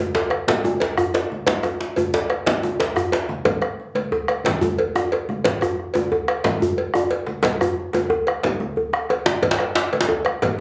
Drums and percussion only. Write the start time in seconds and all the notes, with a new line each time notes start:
0.15 djembe slap, djembe tone, djembe bass
0.30 bombo rim, cowbell, high conga
0.47 bombo low, cowbell, djembe slap, low conga
0.64 bombo rim, djembe slap, high conga, djembe tone
0.80 cowbell, djembe slap, djembe bass
0.97 bombo rim, djembe slap, djembe bass
1.14 bombo rim, cowbell, djembe slap, djembe tone
1.30 bombo rim, high conga
1.46 bombo low, cowbell, djembe slap, high conga, low conga, djembe bass
1.63 bombo rim, cowbell, djembe tone
1.81 djembe slap, high conga
1.96 cowbell, djembe slap, high conga, djembe bass
2.14 djembe slap, djembe tone, djembe bass
2.30 bombo rim, cowbell, high conga
2.46 bombo low, cowbell, djembe slap, low conga
2.63 bombo rim, djembe slap, djembe tone, high conga
2.80 cowbell, djembe slap, djembe bass
2.96 bombo rim, djembe slap, djembe bass
3.12 bombo rim, cowbell, djembe slap, djembe tone
3.29 bombo rim, high conga
3.45 bombo low, cowbell, djembe slap, high conga, djembe bass, low conga
3.61 bombo rim, cowbell, djembe tone
3.80 high conga
3.95 cowbell, djembe slap, high conga
4.12 djembe tone, djembe bass
4.28 bombo rim, cowbell, high conga
4.44 bombo low, cowbell, djembe slap, low conga
4.61 bombo rim, djembe slap, high conga, djembe tone, djembe bass
4.79 cowbell, high conga, djembe bass
4.96 bombo rim, djembe slap, djembe tone
5.12 bombo rim, cowbell, djembe slap, djembe tone
5.29 bombo rim, high conga
5.44 bombo low, cowbell, djembe slap, high conga, low conga, djembe bass
5.61 bombo rim, cowbell, high conga, djembe tone, djembe bass
5.79 bombo rim
5.94 cowbell, djembe slap, high conga, djembe tone
6.12 bombo rim, djembe tone, high conga, djembe bass
6.27 bombo rim, cowbell, djembe slap, high conga
6.44 bombo rim, bombo low, cowbell, djembe slap, high conga, low conga
6.60 high conga, djembe bass
6.77 cowbell, djembe bass
6.94 bombo rim, high conga, djembe tone, djembe bass
7.11 cowbell, djembe slap
7.26 djembe slap, high conga
7.43 bombo low, cowbell, djembe slap, high conga, djembe bass, low conga
7.45 djembe slap
7.61 bombo rim, cowbell, djembe bass
7.78 high conga
7.93 cowbell, djembe slap, high conga, djembe tone
8.10 djembe tone, djembe bass
8.27 bombo rim, cowbell, high conga
8.43 bombo low, cowbell, djembe slap, low conga
8.60 bombo rim, djembe slap, high conga, djembe tone
8.76 high conga, djembe bass
8.93 bombo rim, djembe slap
9.09 bombo rim, cowbell, djembe slap, djembe tone
9.26 bombo rim, djembe slap, high conga
9.43 bombo low, cowbell, djembe slap, high conga, djembe bass, low conga
9.51 djembe slap
9.59 bombo rim, cowbell, djembe tone
9.75 djembe slap, high conga
9.93 cowbell, djembe slap, high conga
10.01 djembe slap
10.09 djembe tone, djembe bass
10.25 bombo rim, cowbell, high conga
10.42 bombo low, cowbell, djembe slap, low conga